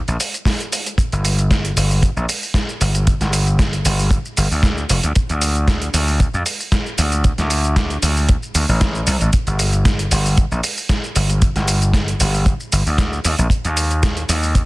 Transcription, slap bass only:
0.08 A#1
1.13 G1
1.77 G1
2.17 A#1
2.81 G1
3.21 G1
3.85 G1
4.37 G1
4.51 D2
4.90 F1
5.04 D2
5.30 D2
5.94 D2
6.34 F2
6.99 D2
7.38 D2
8.03 D2
8.55 D2
8.69 A1
9.07 C2
9.21 A1
9.47 G1
10.12 G1
10.51 A#1
11.16 G1
11.56 G1
12.20 G1
12.73 G1
12.86 D2
13.25 D#2
13.39 A#1
13.65 D#2
14.29 D#2

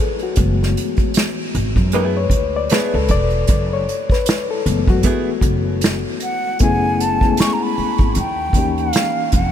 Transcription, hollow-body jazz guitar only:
1.93 A3 B3 E4 G#4
2.71 A3 B3 E4 G#4
5.04 A3 B3 E4 G#4

